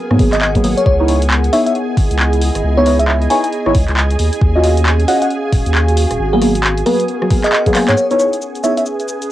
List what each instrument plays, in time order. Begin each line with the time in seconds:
Already playing: ambient pad B3 G#4 A#4 F#5
0.11 sub bass G#2, synth stab F#3 A#3 B3 G#4, cross-stick
0.19 sub bass G#1, synth stab F#3 A#3 B3 G#4, kick, open hi-hat
0.33 sub bass G#1, fm electric piano D#5, clap, closed hi-hat
0.42 fm electric piano D#5, clap
0.55 synth stab F#3 A#3 B3 G#4, kick, closed hi-hat
0.64 sub bass G#1, synth stab F#3 A#3 B3 G#4, open hi-hat
0.77 fm electric piano C#5, closed hi-hat
0.86 sub bass C#2, ambient pad G#4, fm electric piano C#5, kick
1.00 synth stab B3 D#4 E4 C#5
1.08 synth stab B3 D#4 E4 C#5, open hi-hat
1.22 closed hi-hat
1.30 ambient pad E4, clap
1.44 ambient pad D#5, closed hi-hat
1.53 synth stab B3 D#4 E4 C#5, fm electric piano E5, cross-stick, open hi-hat
1.66 fm electric piano E5, closed hi-hat
1.75 closed hi-hat
1.97 sub bass G#1, kick, open hi-hat
2.11 sub bass C#2, closed hi-hat
2.19 clap
2.33 closed hi-hat
2.42 open hi-hat
2.55 sub bass G#1, cross-stick, closed hi-hat
2.64 sub bass C#2
2.77 synth stab B3 D#4 E4 C#5, fm electric piano C#5
2.86 synth stab B3 D#4 E4 C#5, cross-stick, open hi-hat
2.99 fm electric piano E5, closed hi-hat
3.08 fm electric piano E5, clap
3.22 closed hi-hat
3.30 synth stab B3 D#4 E4 C#5, fm electric piano G#5, open hi-hat
3.44 fm electric piano G#5, closed hi-hat
3.53 closed hi-hat
3.66 sub bass G#1, synth stab B3 D#4 E4 C#5, cross-stick
3.75 sub bass C#2, kick, open hi-hat
3.88 sub bass C#2, clap, closed hi-hat
3.97 clap
4.11 closed hi-hat
4.19 sub bass D#2, ambient pad C#4, open hi-hat
4.33 closed hi-hat
4.42 sub bass D#2, kick
4.55 synth stab C#4 F4 F#4 D#5
4.64 synth stab C#4 F4 F#4 D#5, open hi-hat
4.74 ambient pad F#4, closed hi-hat
4.86 clap
5.00 closed hi-hat
5.08 synth stab C#4 F4 F#4 D#5, fm electric piano F#5, open hi-hat
5.22 fm electric piano F#5, closed hi-hat
5.31 closed hi-hat
5.53 sub bass D#1, kick, open hi-hat
5.66 sub bass D#2, closed hi-hat
5.75 clap
5.89 closed hi-hat
5.97 open hi-hat
6.11 sub bass D#1, cross-stick, closed hi-hat
6.19 sub bass G#1, ambient pad B3
6.33 synth stab F#3 A#3 B3 G#4, fm electric piano G#4
6.42 synth stab F#3 A#3 B3 G#4, cross-stick, open hi-hat
6.55 ambient pad A#4, closed hi-hat
6.64 clap
6.78 closed hi-hat
6.86 synth stab F#3 A#3 B3 G#4, fm electric piano B4, cross-stick, open hi-hat
7.00 ambient pad F#5, closed hi-hat
7.08 closed hi-hat
7.22 synth stab F#3 A#3 B3 G#4, cross-stick
7.30 synth stab F#3 A#3 B3 G#4, kick, open hi-hat
7.44 fm electric piano D#5, clap, closed hi-hat
7.53 fm electric piano D#5, clap
7.66 synth stab F#3 A#3 B3 G#4, kick, closed hi-hat
7.75 synth stab F#3 A#3 B3 G#4, clap, open hi-hat
7.88 sub bass G#2, fm electric piano C#5, clap, closed hi-hat
7.97 ambient pad C#4 G#4, fm electric piano C#5, shaker
8.09 synth stab B3 D#4 E4 C#5, ambient pad B4, closed hi-hat, shaker
8.19 synth stab B3 D#4 E4 C#5, shaker
8.33 closed hi-hat, shaker
8.42 shaker
8.55 closed hi-hat, shaker
8.64 synth stab B3 D#4 E4 C#5, fm electric piano E5, cross-stick, shaker
8.77 fm electric piano E5, closed hi-hat, shaker
8.85 ambient pad E5, shaker
9.00 closed hi-hat, shaker
9.08 shaker
9.22 closed hi-hat, shaker